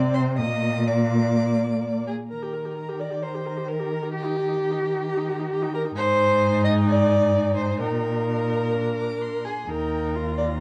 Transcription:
Already playing: cello C3, viola C4, violin D5
0.14 violin C5 C6
0.38 cello A#2, viola A#3, violin D#5 D#6
0.87 viola A#3, violin D5 D6
2.07 violin G#4
2.31 cello D#3, violin A#4 A#5, viola A#4
2.42 viola G4, violin G5
2.53 viola A#4, violin A#5
2.65 viola G4, violin G5
2.77 viola A#4, violin A#5
2.89 viola G4, violin G5
3.00 viola A#4, violin D5 A#5
3.10 viola G4, violin G5
3.23 viola A#4, violin C5 A#5
3.34 viola G4, violin G5
3.45 viola A#4, violin A#5
3.57 viola G4, violin G5
3.68 viola A#4, violin A#4 A#5
3.80 viola G4, violin G5
3.92 viola A#4, violin A#5
4.03 viola G4, violin G5
4.14 violin G4 A#5, viola G4
4.25 viola D#4, violin G5
4.37 viola G4, violin A#5
4.48 viola D#4, violin G5
4.59 viola G4, violin A#5
4.71 viola D#4, violin G5
4.82 viola G4, violin A#5
4.94 viola D#4, violin G5
5.05 viola G4, violin A#5
5.17 viola D#4, violin G5
5.29 viola G4, violin A#5
5.39 viola D#4, violin G5
5.50 viola G4, violin A#5
5.62 viola D#4, violin G5
5.73 viola G4, violin A#4 A#5
5.85 viola D#4, violin G5
5.96 cello G#2, viola D#4, violin C5 G#5
6.65 violin D#5
6.88 violin D5
7.57 violin C5
7.80 cello A#2, viola D#4, violin A#4 G5
8.28 violin A#5
8.75 viola D4
8.98 violin D6
9.21 violin C6
9.45 violin G#4
9.69 cello D#2, viola D#4, violin A#4 G5
10.14 viola F4, violin A#5
10.38 violin D5

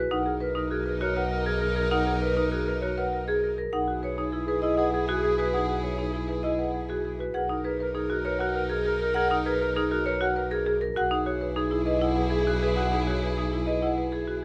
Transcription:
Already playing: marimba F#4, vibraphone B4
0.10 double bass B1, violin section D#4 A#4, marimba D#4, clarinet A#4, vibraphone F#5
0.26 marimba G#4, clarinet A#4
0.40 clarinet A#4, marimba B4, vibraphone B4
0.55 marimba D#4, clarinet A#4
0.71 marimba F#4, vibraphone G#4, clarinet A#4
0.86 clarinet A#4, marimba B4
1.01 marimba F#4, clarinet A#4, vibraphone C#5
1.16 clarinet A#4, marimba B4, vibraphone F#5
1.31 marimba A#4, clarinet A#4
1.46 vibraphone G#4, marimba G#4, clarinet A#4
1.61 clarinet A#4, marimba A#4
1.76 marimba G#4, clarinet A#4, vibraphone A#4
1.91 marimba D#4, clarinet A#4, vibraphone F#5
2.06 marimba G#4, clarinet A#4
2.21 clarinet A#4, marimba B4, vibraphone B4
2.37 marimba D#4, clarinet A#4
2.52 marimba F#4, vibraphone G#4, clarinet A#4
2.66 clarinet A#4, marimba B4
2.81 marimba F#4, clarinet A#4, vibraphone C#5
2.98 clarinet A#4, marimba B4, vibraphone F#5
3.13 marimba A#4, clarinet A#4
3.28 vibraphone G#4, marimba G#4, clarinet A#4
3.43 clarinet A#4, marimba A#4
3.58 marimba G#4, vibraphone A#4
3.73 double bass B1, marimba D#4, violin section E4 G#4, clarinet G#4, vibraphone F#5
3.88 marimba F#4, clarinet G#4
4.03 clarinet G#4, marimba B4, vibraphone C#5
4.17 marimba D#4, clarinet G#4
4.32 marimba E4, vibraphone G#4, clarinet G#4
4.47 clarinet G#4, marimba B4
4.62 marimba E4, clarinet G#4, vibraphone D#5
4.77 clarinet G#4, marimba B4, vibraphone F#5
4.92 clarinet G#4, marimba G#4
5.07 marimba F#4, clarinet G#4, vibraphone G#4
5.22 clarinet G#4, marimba G#4
5.38 marimba F#4, clarinet G#4, vibraphone B4
5.53 marimba D#4, clarinet G#4, vibraphone F#5
5.69 marimba F#4, clarinet G#4
5.83 clarinet G#4, marimba B4, vibraphone C#5
5.99 marimba D#4, clarinet G#4
6.13 marimba E4, vibraphone G#4, clarinet G#4
6.29 clarinet G#4, marimba B4
6.43 marimba E4, clarinet G#4, vibraphone D#5
6.58 clarinet G#4, marimba B4, vibraphone F#5
6.73 clarinet G#4, marimba G#4
6.89 marimba F#4, vibraphone G#4, clarinet G#4
7.05 marimba G#4, clarinet G#4
7.19 marimba F#4, vibraphone B4
7.34 double bass B1, violin section D#4 A#4, marimba G#4, clarinet A#4, vibraphone F#5
7.49 marimba D#4, clarinet A#4
7.64 marimba G#4, clarinet A#4, vibraphone B4
7.80 clarinet A#4, marimba B4
7.94 marimba D#4, vibraphone G#4, clarinet A#4
8.10 marimba F#4, clarinet A#4
8.25 clarinet A#4, marimba B4, vibraphone C#5
8.39 marimba F#4, clarinet A#4, vibraphone F#5
8.55 clarinet A#4, marimba B4
8.70 vibraphone G#4, clarinet A#4, marimba A#4
8.86 marimba G#4, clarinet A#4
8.99 vibraphone A#4, marimba A#4, clarinet A#4
9.14 marimba G#4, clarinet A#4, vibraphone F#5
9.30 marimba D#4, clarinet A#4
9.46 marimba G#4, clarinet A#4, vibraphone B4
9.61 clarinet A#4, marimba B4
9.75 marimba D#4, vibraphone G#4, clarinet A#4
9.91 marimba F#4, clarinet A#4
10.06 clarinet A#4, marimba B4, vibraphone C#5
10.21 marimba F#4, clarinet A#4, vibraphone F#5
10.36 clarinet A#4, marimba B4
10.51 vibraphone G#4, marimba A#4, clarinet A#4
10.66 marimba G#4, clarinet A#4
10.81 vibraphone A#4, marimba A#4
10.96 double bass B1, violin section E4 G#4, marimba F#4, clarinet G#4, vibraphone F#5
11.11 marimba D#4, clarinet G#4
11.26 marimba F#4, clarinet G#4, vibraphone C#5
11.41 clarinet G#4, marimba B4
11.56 marimba D#4, vibraphone G#4, clarinet G#4
11.71 marimba E4, clarinet G#4
11.86 clarinet G#4, marimba B4, vibraphone D#5
12.01 marimba E4, clarinet G#4, vibraphone F#5
12.16 clarinet G#4, marimba B4
12.30 vibraphone G#4, clarinet G#4, marimba G#4
12.46 marimba F#4, clarinet G#4
12.61 clarinet G#4, marimba G#4, vibraphone B4
12.76 marimba F#4, clarinet G#4, vibraphone F#5
12.92 marimba D#4, clarinet G#4
13.07 marimba F#4, clarinet G#4, vibraphone C#5
13.22 clarinet G#4, marimba B4
13.37 marimba D#4, vibraphone G#4, clarinet G#4
13.53 marimba E4, clarinet G#4
13.66 clarinet G#4, marimba B4, vibraphone D#5
13.82 marimba E4, clarinet G#4, vibraphone F#5
13.98 clarinet G#4, marimba B4
14.12 vibraphone G#4, clarinet G#4, marimba G#4
14.28 marimba F#4, clarinet G#4

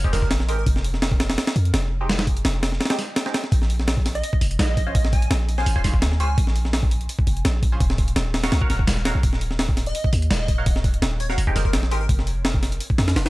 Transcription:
0.04 synth stab G#3 C4 D#4 G4, kick
0.13 808-style bass F1, synth stab G#3 C4 D#4 G4, digital synth lead A#4, snare, open hi-hat
0.22 digital synth lead A#4, kick
0.31 808-style bass A#1, snare, open hi-hat
0.40 snare
0.49 808-style bass G#1, synth stab G#3 C4 D#4 G4, digital synth lead A#4, open hi-hat
0.58 digital synth lead A#4
0.66 808-style bass F1, kick, open hi-hat
0.76 snare
0.84 open hi-hat
0.94 snare
1.02 snare, open hi-hat
1.12 kick
1.20 snare, open hi-hat
1.30 snare, open hi-hat
1.38 snare, open hi-hat
1.47 snare, open hi-hat
1.56 808-style bass F2, open hi-hat
1.65 closed hi-hat
1.74 808-style bass F1, snare, open hi-hat
2.01 synth stab G#3 C4 D#4 G4
2.09 snare, open hi-hat
2.19 snare, open hi-hat
2.27 kick, open hi-hat
2.37 closed hi-hat
2.45 808-style bass F1, snare, open hi-hat
2.63 snare, open hi-hat
2.72 snare
2.81 snare, open hi-hat
2.85 snare, open hi-hat
2.90 synth stab G#3 C4 D#4 G4, snare, open hi-hat
2.99 snare, open hi-hat
3.16 snare, open hi-hat
3.26 synth stab G#3 C4 D#4 G4, snare
3.34 snare, open hi-hat
3.44 snare
3.52 808-style bass A#1, kick, open hi-hat
3.62 snare
3.70 open hi-hat
3.80 snare
3.88 snare, open hi-hat
3.97 kick
4.06 snare, open hi-hat
4.15 digital synth lead D#5, closed hi-hat
4.24 open hi-hat
4.33 kick
4.41 808-style bass F1, open hi-hat
4.51 closed hi-hat
4.59 808-style bass A#1, digital synth lead D#5, snare, open hi-hat
4.77 kick, open hi-hat
4.87 synth stab C#4 F4 G#4 C5
4.95 kick, open hi-hat
5.05 snare
5.13 digital synth lead G#5, kick, open hi-hat
5.22 closed hi-hat
5.31 808-style bass A#1, snare, open hi-hat
5.49 open hi-hat
5.58 synth stab C#4 F4 G#4 C5, digital synth lead G#5, snare
5.66 808-style bass G#1, open hi-hat
5.76 synth stab C#4 F4 G#4 C5, kick
5.84 808-style bass A#1, synth stab C#4 F4 G#4 C5, snare, open hi-hat
5.94 kick
6.02 808-style bass D#2, snare, open hi-hat
6.12 snare
6.20 808-style bass C#2, synth stab C#4 F4 G#4 C5, digital synth lead G#5, open hi-hat
6.38 808-style bass A#1, kick, open hi-hat
6.47 snare
6.56 open hi-hat
6.65 snare
6.73 snare, open hi-hat
6.83 kick
6.91 open hi-hat
7.01 closed hi-hat
7.09 open hi-hat
7.19 kick
7.27 808-style bass F1, open hi-hat
7.37 closed hi-hat
7.45 808-style bass A#1, snare, open hi-hat
7.63 kick, open hi-hat
7.72 synth stab C#4 F4 G#4 C5
7.80 808-style bass D#1, kick, open hi-hat
7.90 snare
7.98 kick, open hi-hat
8.08 closed hi-hat
8.16 808-style bass D#1, snare, open hi-hat
8.34 snare, open hi-hat
8.44 synth stab F#4 A#4 C#5 F5, snare, open hi-hat
8.52 808-style bass C#2, snare, open hi-hat
8.61 synth stab F#4 A#4 C#5 F5, kick
8.70 808-style bass D#1, synth stab F#4 A#4 C#5 F5, snare, open hi-hat
8.79 kick
8.87 808-style bass D#1, snare, open hi-hat
8.97 snare
9.05 synth stab F#4 A#4 C#5 F5, snare, open hi-hat
9.15 808-style bass A#1
9.23 808-style bass D#1, kick, open hi-hat
9.33 snare
9.41 open hi-hat
9.51 snare
9.59 snare, open hi-hat
9.69 kick
9.77 snare, open hi-hat
9.86 digital synth lead D#5, closed hi-hat
9.95 open hi-hat
10.04 kick
10.13 808-style bass D#2, open hi-hat
10.22 closed hi-hat
10.31 808-style bass D#1, digital synth lead D#5, snare, open hi-hat
10.48 kick, open hi-hat
10.58 synth stab F#4 A#4 C#5 F5
10.66 kick, open hi-hat
10.76 snare
10.84 kick, open hi-hat
10.94 closed hi-hat
11.02 808-style bass D#1, snare, open hi-hat
11.20 digital synth lead C#5, open hi-hat
11.29 synth stab F#4 A#4 C#5 F5, digital synth lead C#5, snare
11.38 808-style bass F1, open hi-hat
11.47 synth stab G#3 C4 D#4 G4, kick
11.56 808-style bass F1, synth stab G#3 C4 D#4 G4, digital synth lead A#4, snare, open hi-hat
11.65 digital synth lead A#4, kick
11.73 808-style bass A#1, snare, open hi-hat
11.83 snare
11.91 808-style bass G#1, synth stab G#3 C4 D#4 G4, digital synth lead A#4, open hi-hat
12.01 digital synth lead A#4
12.09 808-style bass F1, kick, open hi-hat
12.19 snare
12.27 open hi-hat
12.45 snare, open hi-hat
12.54 kick
12.63 snare, open hi-hat
12.72 closed hi-hat
12.80 open hi-hat
12.90 kick
12.98 808-style bass F2, snare, open hi-hat
13.08 snare, open hi-hat
13.16 808-style bass F1, snare, open hi-hat
13.26 snare, open hi-hat

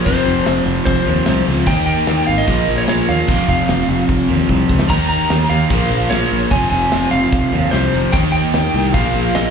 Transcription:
0.05 fingered electric bass F1, overdriven electric guitar F2 C3 F3, lead electric guitar C5, kick, crash
0.26 fingered electric bass F1
0.46 fingered electric bass F1, snare, crash
0.66 fingered electric bass F1
0.85 fingered electric bass F1, lead electric guitar C5, kick, crash
1.06 fingered electric bass D#2, overdriven electric guitar F2 C3 F3
1.26 fingered electric bass C2, overdriven electric guitar F2 C3, snare, crash
1.30 overdriven electric guitar F3
1.47 fingered electric bass C#2, distorted electric guitar F2 C3 F3
1.66 fingered electric bass D#2, overdriven electric guitar D#3 A#3 D#4, lead electric guitar G5, kick, crash
1.86 lead electric guitar G5
2.07 fingered electric bass D#2, snare, crash
2.27 fingered electric bass G#1, lead electric guitar F5
2.38 lead electric guitar D#5, snare
2.47 fingered electric bass A#1, overdriven electric guitar A#2 F3 A#3, kick, crash
2.69 fingered electric bass A#1
2.78 lead electric guitar C#5
2.88 fingered electric bass A#1, lead electric guitar C#5, snare, crash
3.09 fingered electric bass D#2, lead electric guitar F5
3.28 fingered electric bass F1, overdriven electric guitar F2 C3, kick, crash
3.32 overdriven electric guitar F3
3.49 fingered electric bass F1, lead electric guitar F5, kick
3.69 fingered electric bass F1, snare, crash
3.88 fingered electric bass F1
3.99 snare
4.09 fingered electric bass F1, kick, crash
4.28 fingered electric bass D#2, overdriven electric guitar F2 C3 F3
4.48 fingered electric bass C2, overdriven electric guitar F2 C3 F3, kick
4.69 fingered electric bass C#2, distorted electric guitar F2 C3 F3, kick
4.79 snare
4.89 fingered electric bass D#2, overdriven electric guitar D#3 A#3, lead electric guitar A#5, kick, crash
4.93 overdriven electric guitar D#4
5.09 lead electric guitar A#5
5.30 fingered electric bass D#2, snare, crash
5.40 snare
5.50 fingered electric bass D#2, lead electric guitar F5
5.70 fingered electric bass A#1, overdriven electric guitar A#2 F3, kick, crash
5.74 overdriven electric guitar A#3
5.91 fingered electric bass A#1
6.10 fingered electric bass A#1, lead electric guitar C#5, snare, crash
6.32 fingered electric bass A#1
6.50 fingered electric bass F1, overdriven electric guitar F2 C3, lead electric guitar G#5, kick, crash
6.55 overdriven electric guitar F3
6.70 fingered electric bass F1, lead electric guitar G#5
6.92 fingered electric bass F1, snare, crash
7.11 fingered electric bass F1, lead electric guitar F5
7.22 snare
7.32 fingered electric bass F1, kick, crash
7.52 fingered electric bass D#2, overdriven electric guitar C3 F3
7.56 overdriven electric guitar F2
7.71 fingered electric bass C2, overdriven electric guitar F2 C3, lead electric guitar C5, snare, crash
7.76 overdriven electric guitar F3
7.93 fingered electric bass F1, distorted electric guitar F2 C3 F3
8.12 fingered electric bass D#2, overdriven electric guitar D#3 A#3, lead electric guitar G5, kick, crash
8.17 overdriven electric guitar D#4
8.32 lead electric guitar G5
8.54 fingered electric bass D#2, snare, crash
8.65 snare
8.74 fingered electric bass C2
8.85 snare
8.93 fingered electric bass A#1, overdriven electric guitar A#2 F3 A#3, lead electric guitar F5, kick, crash
9.15 fingered electric bass A#1
9.35 fingered electric bass A#1, lead electric guitar D#5, snare, crash

